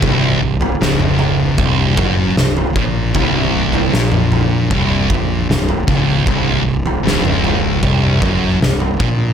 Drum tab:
SD |----o-------o---|----o-------o---|----o-------o---|
T2 |-----o--o-o-----|-----o--o-o-----|-----o--o-o-----|
FT |o--o--o---o--o--|o--o--o---o--o--|o--o--o---o--o--|
BD |o-------o-o---o-|o-------o-o---o-|o-------o-o---o-|